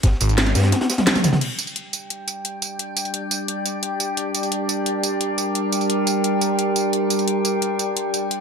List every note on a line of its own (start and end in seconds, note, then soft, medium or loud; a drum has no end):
0.03 kick loud
0.03 snare loud
0.03 closed hi-hat medium
0.12 snare soft
0.20 0.54 G#1 loud
0.20 closed hi-hat medium
0.20 tambourine medium
0.29 closed hi-hat soft
0.29 tambourine soft
0.37 snare loud
0.37 closed hi-hat medium
0.37 closed hi-hat loud
0.47 snare soft
0.47 closed hi-hat soft
0.55 0.72 G2 loud
0.55 snare medium
0.55 closed hi-hat medium
0.55 tambourine medium
0.59 snare medium
0.59 closed hi-hat medium
0.63 snare loud
0.63 closed hi-hat medium
0.72 snare loud
0.72 closed hi-hat medium
0.72 high tom medium
0.81 snare loud
0.81 closed hi-hat medium
0.81 high tom medium
0.90 snare loud
0.90 closed hi-hat medium
0.90 tambourine medium
0.98 snare loud
0.98 closed hi-hat soft
0.98 closed hi-hat medium
0.98 mid tom medium
1.07 snare loud
1.07 closed hi-hat loud
1.07 closed hi-hat medium
1.07 mid tom medium
1.15 snare loud
1.15 closed hi-hat soft
1.15 closed hi-hat medium
1.15 mid tom medium
1.15 tambourine soft
1.24 snare loud
1.24 closed hi-hat medium
1.24 mid tom loud
1.24 tambourine medium
1.32 snare loud
1.32 closed hi-hat medium
1.32 mid tom medium
1.41 8.40 G3 medium
1.41 8.40 D4 medium
1.41 8.40 G4 medium
1.41 4.16 G5 medium
1.41 closed hi-hat medium
1.41 crash medium
1.59 closed hi-hat medium
1.59 tambourine medium
1.67 closed hi-hat soft
1.67 tambourine soft
1.76 closed hi-hat medium
1.93 closed hi-hat medium
1.93 tambourine medium
2.10 closed hi-hat medium
2.28 closed hi-hat medium
2.28 tambourine medium
2.45 closed hi-hat medium
2.62 closed hi-hat medium
2.62 tambourine medium
2.79 closed hi-hat medium
2.97 closed hi-hat medium
2.97 tambourine medium
3.05 closed hi-hat soft
3.05 tambourine soft
3.14 closed hi-hat medium
3.31 closed hi-hat medium
3.31 tambourine medium
3.48 closed hi-hat medium
3.66 closed hi-hat medium
3.66 tambourine medium
3.83 closed hi-hat medium
4.00 closed hi-hat medium
4.00 tambourine medium
4.17 6.92 A#4 medium
4.17 closed hi-hat medium
4.35 closed hi-hat medium
4.35 tambourine medium
4.43 closed hi-hat soft
4.43 tambourine soft
4.52 closed hi-hat medium
4.69 closed hi-hat medium
4.69 tambourine medium
4.86 closed hi-hat medium
5.03 closed hi-hat medium
5.03 tambourine medium
5.21 closed hi-hat medium
5.38 closed hi-hat medium
5.38 tambourine medium
5.55 closed hi-hat medium
5.72 closed hi-hat medium
5.72 tambourine medium
5.81 closed hi-hat soft
5.81 tambourine soft
5.90 closed hi-hat medium
6.07 closed hi-hat medium
6.07 tambourine medium
6.24 closed hi-hat medium
6.41 closed hi-hat medium
6.41 tambourine medium
6.59 closed hi-hat medium
6.76 closed hi-hat medium
6.76 tambourine medium
6.93 8.40 G5 medium
6.93 closed hi-hat medium
7.10 closed hi-hat medium
7.10 tambourine medium
7.19 closed hi-hat soft
7.19 tambourine soft
7.28 closed hi-hat medium
7.45 closed hi-hat medium
7.45 tambourine medium
7.62 closed hi-hat medium
7.79 closed hi-hat medium
7.79 tambourine medium
7.97 closed hi-hat medium
8.14 closed hi-hat medium
8.14 tambourine medium
8.31 closed hi-hat medium